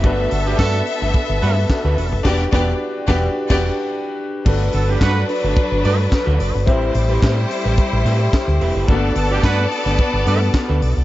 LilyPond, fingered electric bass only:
\new Staff \with { instrumentName = "Fingered electric bass" } { \clef bass \time 4/4 \key g \major \tempo 4 = 109 g,,8 g,,8 g,8 r16 g,,16 r16 g,,16 g,8 r16 d,16 e,,16 fis,,16 | e,,8 e,,8 r8 e,,8 r16 e,,8 r4 r16 | g,,8 g,,8 g,8 r16 g,,16 r16 g,,16 g,8 r16 d,16 fis,,16 g,,16 | a,,8 a,,8 a,8 r16 a,,16 r16 a,,16 a,8 r16 d,16 e,,16 fis,,16 |
g,,8 g,,8 g,8 r16 g,,16 r16 g,,16 g,8 r16 d,16 b,,16 c,16 | }